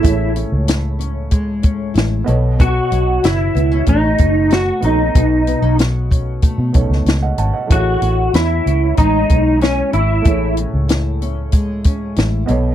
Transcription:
<<
  \new Staff \with { instrumentName = "Upright piano" } { \time 4/4 \key a \lydian \tempo 4 = 94 << { r1 | r1 | r2. r16 <dis'' fis''>16 <fis'' a''>16 <dis'' fis''>16~ | <dis'' fis''>16 r2. r8. |
r1 | } \\ { <a e' gis' cis''>2.~ <a e' gis' cis''>8 <b a' cis'' dis''>8~ | <b a' cis'' dis''>2.~ <b a' cis'' dis''>8 <b dis' a' dis''>8~ | <b dis' a' dis''>2~ <b dis' a' dis''>8 <b dis' a' cis''>4. | <e a gis' cis''>1 |
<a e' gis' cis''>2.~ <a e' gis' cis''>8 <b a' cis'' dis''>8 | } >> }
  \new Staff \with { instrumentName = "Clean electric guitar" } { \time 4/4 \key a \lydian e'8 r2. r8 | fis'4 e'4 dis'4 fis'8 dis'8~ | dis'4 r2. | fis'4 e'4 dis'4 cis'8 e'8~ |
e'8 r2. r8 | }
  \new Staff \with { instrumentName = "Nylon-string guitar" } { \time 4/4 \key a \lydian <a, gis cis' e'>8 cis'8 e'8 cis'8 gis8 cis'8 e'8 b,8 | <b, fis'>8 cis'8 fis'8 b16 cis'16 a8 cis'8 fis'8 cis'8 | <b, fis'>8 b16 cis'16 fis'8 cis'8 a8 cis'8 fis'8 cis'8 | e'8 cis'4 cis'8 gis8 cis'8 e'8 cis'8 |
<a, e'>8 cis'8 e'8 cis'8 gis8 cis'8 e'8 b,8 | }
  \new Staff \with { instrumentName = "Fingered electric bass" } { \clef bass \time 4/4 \key a \lydian a,,8. cis,2~ cis,16 a,,8 b,,8~ | b,,8 b,,8 fis,,8 cis,8 a,,8 fis,,4 bes,,8 | b,,8. b,,4~ b,,16 r16 b,16 b,,16 cis,16 cis,8 gis,,16 r16 | a,,8 a,,8 e,8 cis,8 a,,8 b,,4 gis,,8 |
a,,8. cis,2~ cis,16 a,,8 b,,8 | }
  \new DrumStaff \with { instrumentName = "Drums" } \drummode { \time 4/4 <hh bd>8 hh8 <hh sn>8 hh8 <hh bd>8 <hh bd>8 <hh sn>8 hh8 | <hh bd>8 hh8 <hh sn>8 hh8 <hh bd>8 <hh bd>8 <hh sn>8 hh8 | <hh bd>8 hh8 <hh sn>8 <hh bd>8 <hh bd>8 <hh bd>16 sn16 <hh sn>8 hh8 | <hh bd>8 hh8 <hh sn>8 hh8 <hh bd>8 <hh bd>8 <hh sn>8 hh8 |
<hh bd>8 hh8 <hh sn>8 hh8 <hh bd>8 <hh bd>8 <hh sn>8 hh8 | }
>>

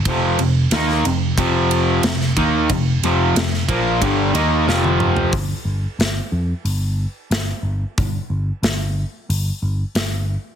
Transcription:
<<
  \new Staff \with { instrumentName = "Distorted electric guitar" } { \clef bass \time 4/4 \key f \mixolydian \tempo 4 = 91 <f, c f>8 <f, c>8 <ees bes ees'>8 <f, c>8 <f, c f>4 <f, c>8 <ees bes ees'>8 | <f, c>8 <f, c f>8 <f, c>8 <bes, f bes>8 <g, d g>8 <ees bes ees'>8 <f, c f>4 | r1 | r1 | }
  \new Staff \with { instrumentName = "Picked electric bass" } { \clef bass \time 4/4 \key f \mixolydian f,,8 f,,8 ees,8 f,,8 f,,4 f,,8 ees,8 | f,,8 f,,8 f,,8 bes,,8 g,,8 ees,8 f,,4 | g,,8 g,,8 g,,8 f,8 g,,4 g,,8 g,,8 | g,,8 g,,8 g,,4 g,,8 g,,8 g,,4 | }
  \new DrumStaff \with { instrumentName = "Drums" } \drummode { \time 4/4 <bd cymr>8 cymr8 <cymr sn>16 sn16 cymr8 <bd cymr>8 cymr8 <cymr sn>16 sn16 <bd cymr>8 | <bd cymr>8 cymr8 <cymr sn>16 sn16 <bd cymr>8 <bd cymr>8 cymr8 sn16 tommh16 toml16 tomfh16 | <hho bd>4 <hho sn>4 hho4 <hho sn>4 | <hho bd>4 <hho sn>4 hho4 <hho sn>4 | }
>>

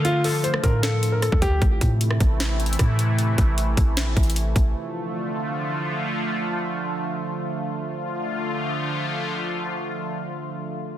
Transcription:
<<
  \new Staff \with { instrumentName = "Grand piano" } { \time 4/4 \key d \minor \tempo 4 = 153 f'8 a'8 c''8 bes'8 a'8. bes'16 a'8 g'8 | r1 | r1 | r1 |
r1 | r1 | r1 | }
  \new Staff \with { instrumentName = "Analog synth pad" } { \clef bass \time 4/4 \key d \minor <d f a f'>1 | <c e a e'>1~ | <c e a e'>1 | <d f a f'>1~ |
<d f a f'>1 | <d f a f'>1~ | <d f a f'>1 | }
  \new Staff \with { instrumentName = "808-style bass" } { \clef bass \time 4/4 \key d \minor d4. a,4.~ a,16 d,16 d,8 | a,,8 a,4 a,,4. a,4~ | a,8 a,,4 a,,8 bes,,16 a,,16 a,,4 a,,8 | r1 |
r1 | r1 | r1 | }
  \new DrumStaff \with { instrumentName = "Drums" } \drummode { \time 4/4 hh8 hho8 hh16 ss16 <hh bd>8 <hh sn>8 hh8 <hh ss>16 bd16 <hh bd>8 | <hh bd>8 <hh bd>8 hh16 ss16 <hh bd>8 \tuplet 3/2 { <hh sn>16 r16 r16 hh16 hh16 hh16 } <hh bd ss>8 hh8 | hh8 <hh bd>8 hh8 <hh bd>8 \tuplet 3/2 { <hh sn>16 r16 r16 <hh bd>16 hh16 hh16 } hh8 <hh bd>8 | r4 r4 r4 r4 |
r4 r4 r4 r4 | r4 r4 r4 r4 | r4 r4 r4 r4 | }
>>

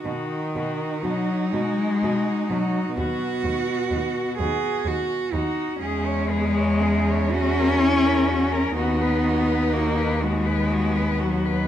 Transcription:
<<
  \new Staff \with { instrumentName = "Cello" } { \time 6/8 \key b \major \tempo 4. = 41 fis'8 fis'8 fis'8 fis'8 fis'8 fis'8 | fis'8 fis'8 fis'8 fis'8 fis'8 fis'8 | gis'16 cis''16 gis'16 cis''16 gis'16 cis''16 fis'16 ais'16 cis''16 ais'16 fis'16 ais'16 | fis'16 b'16 fis'16 b'16 fis'16 b'16 fis'16 b'16 fis'16 b'16 fis'16 b'16 | }
  \new Staff \with { instrumentName = "Cello" } { \time 6/8 \key b \major dis'2. | fis'4. gis'8 fis'8 dis'8 | cis'8 b8 cis'8 fis'8 e'8 cis'8 | dis'4. b4. | }
  \new Staff \with { instrumentName = "Cello" } { \clef bass \time 6/8 \key b \major dis4 fis8 gis4 fis8 | b,2~ b,8 r8 | gis4. cis'4. | b4 ais8 gis4 fis8 | }
  \new Staff \with { instrumentName = "Cello" } { \clef bass \time 6/8 \key b \major b,8 b,8 b,8 b,8 b,8 b,8 | dis,8 dis,8 dis,8 dis,8 dis,8 dis,8 | e,2. | dis,2. | }
>>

